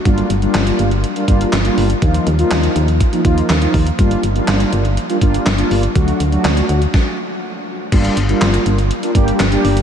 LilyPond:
<<
  \new Staff \with { instrumentName = "Analog polysynth" } { \time 4/4 \key g \minor \tempo 4 = 122 <g bes d' f'>8 r16 <g bes d' f'>4 r8 <g bes d' f'>16 <g bes d' f'>8 r16 <g bes d' f'>8 r16 | <f bes ees' f'>8 r16 <f bes ees' f'>4 r8 <f bes ees' f'>16 <f bes ees' f'>8 r16 <f bes ees' f'>8 r16 | <g bes d' f'>8 r16 <g bes d' f'>4 r8 <g bes d' f'>16 <g bes d' f'>8 r16 <g bes d' f'>8 r16 | <fis a d' fis'>8 r16 <fis a d' fis'>4 r2 r16 |
<g bes d' f'>8 r16 <g bes d' f'>4 r8 <g bes d' f'>16 <g bes d' g'>8 r16 <g bes d' g'>8 r16 | }
  \new Staff \with { instrumentName = "FM bass" } { \clef bass \time 4/4 \key g \minor g,,8 g,,8 g,,8 g,,8. r16 g,,8 g,,8 g,,8 | ees,8 ees,8 ees,8 ees,8. r16 ees,8 ees,8 ees,8 | g,,8 g,,8 g,,8 g,,8. r16 g,,8 g,,8 g,,8 | d,8 d,8 d,8 d,8 r2 |
g,,8 g,,8 g,,8 g,,8. r16 g,,8 g,,8 g,,8 | }
  \new DrumStaff \with { instrumentName = "Drums" } \drummode { \time 4/4 <hh bd>16 hh16 hh16 hh16 <hc hh sn>16 hh16 hh16 hh16 hh16 hh16 <hh bd>16 hh16 <hc hh sn>16 hh16 hho16 hh16 | <hh bd>16 hh16 hh16 hh16 <hc hh sn>16 hh16 hh16 hh16 <hh bd>16 hh16 <hh bd>16 hh16 <hc hh sn>16 hh16 <hho bd>16 hh16 | <hh bd>16 hh16 hh16 hh16 <hc hh sn>16 hh16 hh16 hh16 hh16 hh16 <hh bd>16 hh16 <hc hh sn>16 hh16 hho16 hh16 | <hh bd>16 hh16 hh16 hh16 <hc hh sn>16 hh16 hh16 hh16 <bd sn>4 r4 |
<cymc hh bd>16 hh16 hh16 hh16 <hc hh sn>16 hh16 hh16 hh16 hh16 hh16 <hh bd>16 hh16 <hc hh sn>16 hh16 hho16 hh16 | }
>>